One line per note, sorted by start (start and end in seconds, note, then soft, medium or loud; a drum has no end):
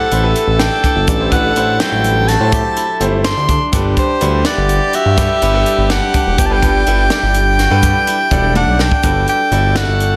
0.00 0.60 D4 medium
0.00 0.11 E4 medium
0.00 1.87 G4 medium
0.00 3.42 A4 loud
0.00 0.32 F#5 medium
0.11 0.33 A1 medium
0.11 0.20 A3 medium
0.11 1.56 E4 medium
0.11 0.20 E4 medium
0.11 0.21 G4 medium
0.11 0.21 C5 medium
0.11 closed hi-hat medium
0.23 0.93 A3 medium
0.23 0.93 E4 medium
0.23 0.93 G4 medium
0.23 0.94 B4 medium
0.35 closed hi-hat medium
0.47 0.69 A1 medium
0.59 0.84 D4 medium
0.59 1.04 G5 medium
0.59 snare loud
0.59 closed hi-hat medium
0.84 1.08 D4 medium
0.84 kick medium
0.84 closed hi-hat medium
0.96 1.07 G1 medium
1.08 1.52 A1 loud
1.08 3.24 D4 medium
1.08 kick loud
1.08 closed hi-hat medium
1.08 shaker medium
1.20 1.29 A3 medium
1.20 1.29 E4 medium
1.20 1.29 G4 medium
1.20 1.29 C5 medium
1.32 1.50 A3 medium
1.32 1.50 E4 medium
1.32 1.50 G4 medium
1.32 1.50 B4 medium
1.32 1.81 F#5 medium
1.32 kick medium
1.32 closed hi-hat medium
1.56 1.78 A1 medium
1.56 1.73 A3 medium
1.56 1.74 E4 medium
1.56 2.76 E4 medium
1.56 1.74 G4 medium
1.56 1.74 C5 medium
1.56 closed hi-hat medium
1.56 shaker soft
1.80 3.78 F#3 medium
1.80 2.24 G3 medium
1.80 2.24 A3 medium
1.80 2.24 E4 medium
1.80 2.25 C5 medium
1.80 2.30 G5 medium
1.80 snare loud
1.80 closed hi-hat medium
1.92 2.36 A1 medium
2.04 closed hi-hat medium
2.28 2.59 F#4 medium
2.28 3.01 A5 loud
2.28 snare soft
2.28 closed hi-hat medium
2.40 2.62 A2 medium
2.40 2.84 A3 medium
2.40 2.84 E4 medium
2.40 2.84 G4 medium
2.40 2.85 C5 medium
2.52 4.52 G4 medium
2.52 kick loud
2.52 closed hi-hat medium
2.52 shaker medium
2.76 4.21 E4 medium
2.76 closed hi-hat medium
3.00 3.33 G1 loud
3.00 3.53 A3 medium
3.00 3.53 E4 medium
3.00 3.53 G4 medium
3.00 3.53 C5 loud
3.00 closed hi-hat medium
3.24 3.48 D4 medium
3.24 3.70 C6 loud
3.24 snare loud
3.24 closed hi-hat medium
3.37 3.59 D2 medium
3.49 3.72 D4 medium
3.49 kick medium
3.49 closed hi-hat medium
3.72 3.95 G1 medium
3.72 4.07 G3 medium
3.72 4.08 D4 medium
3.72 5.90 D4 medium
3.72 8.75 G4 loud
3.72 4.08 A4 medium
3.72 4.08 B4 medium
3.72 kick loud
3.72 closed hi-hat medium
3.72 shaker medium
3.97 4.48 C5 medium
3.97 kick medium
3.97 closed hi-hat medium
4.21 4.43 D2 medium
4.21 4.91 G3 medium
4.21 4.91 D4 medium
4.21 5.42 E4 medium
4.21 4.91 A4 medium
4.21 4.91 B4 medium
4.21 closed hi-hat medium
4.21 shaker soft
4.45 4.96 D5 medium
4.45 5.24 F#5 medium
4.45 snare loud
4.45 closed hi-hat medium
4.58 4.79 G1 medium
4.69 closed hi-hat medium
4.93 5.24 F#4 medium
4.93 5.90 E5 loud
4.93 closed hi-hat medium
5.06 5.28 G2 loud
5.16 5.35 G3 medium
5.16 5.35 D4 medium
5.16 7.11 G4 medium
5.16 5.35 A4 medium
5.16 5.35 B4 medium
5.16 kick loud
5.16 snare soft
5.16 closed hi-hat medium
5.16 shaker medium
5.41 5.64 G1 medium
5.41 5.50 G3 medium
5.41 5.50 D4 medium
5.41 6.86 E4 medium
5.41 5.51 A4 medium
5.41 5.51 B4 medium
5.41 closed hi-hat medium
5.53 6.23 G3 medium
5.53 6.24 D4 medium
5.53 6.24 A4 medium
5.53 6.24 B4 medium
5.66 closed hi-hat medium
5.78 6.00 G1 medium
5.90 6.14 D4 medium
5.90 6.41 F#5 medium
5.90 snare loud
5.90 closed hi-hat medium
6.14 6.38 D4 medium
6.14 kick medium
6.14 closed hi-hat medium
6.27 6.37 E1 medium
6.38 6.83 G1 loud
6.38 8.55 D4 medium
6.38 6.48 G5 medium
6.38 kick loud
6.38 closed hi-hat medium
6.38 shaker medium
6.46 6.59 G3 medium
6.46 6.59 D4 medium
6.46 6.54 A5 medium
6.51 6.59 A4 medium
6.51 6.60 B4 medium
6.51 8.56 G5 loud
6.62 6.80 G3 medium
6.62 6.80 D4 medium
6.62 6.80 A4 medium
6.62 6.80 B4 medium
6.62 kick medium
6.62 closed hi-hat medium
6.86 7.09 G1 medium
6.86 7.04 G3 medium
6.86 7.04 D4 medium
6.86 8.07 E4 medium
6.86 7.05 A4 medium
6.86 7.05 B4 medium
6.86 closed hi-hat medium
6.86 shaker soft
7.10 7.54 G3 medium
7.10 7.55 D4 medium
7.10 7.65 G4 medium
7.10 7.55 A4 medium
7.10 7.55 D5 medium
7.10 snare loud
7.10 closed hi-hat medium
7.23 7.67 G1 medium
7.34 closed hi-hat medium
7.34 shaker soft
7.59 7.89 F#4 medium
7.59 snare soft
7.59 closed hi-hat medium
7.70 7.93 G2 medium
7.70 8.14 G3 loud
7.70 8.14 D4 medium
7.70 8.15 A4 medium
7.70 8.15 B4 loud
7.83 9.82 G4 medium
7.83 kick loud
7.83 closed hi-hat medium
7.83 shaker medium
8.07 9.52 E4 medium
8.07 closed hi-hat medium
8.31 8.64 E1 loud
8.31 8.83 G3 loud
8.31 8.84 D4 medium
8.31 8.84 A4 medium
8.31 8.84 D5 loud
8.31 kick medium
8.31 closed hi-hat medium
8.55 8.79 D4 medium
8.55 8.83 F#5 loud
8.55 high tom medium
8.67 8.89 B1 medium
8.79 9.03 D4 medium
8.79 9.29 G5 loud
8.79 snare medium
8.91 kick medium
9.03 9.26 G1 medium
9.03 9.38 G3 medium
9.03 10.16 D4 medium
9.03 9.38 F#4 medium
9.03 10.16 A4 medium
9.03 9.39 A4 medium
9.03 9.39 B4 medium
9.03 kick loud
9.03 closed hi-hat medium
9.03 shaker medium
9.27 9.78 G5 loud
9.27 closed hi-hat medium
9.51 9.84 G1 loud
9.51 10.16 G3 medium
9.51 10.16 E4 medium
9.51 10.16 F#4 medium
9.51 10.16 A4 medium
9.51 10.16 D5 medium
9.51 closed hi-hat soft
9.76 10.16 F#4 medium
9.76 10.16 F#5 loud
9.76 snare loud
9.76 closed hi-hat medium
9.88 10.16 G1 medium
10.00 closed hi-hat medium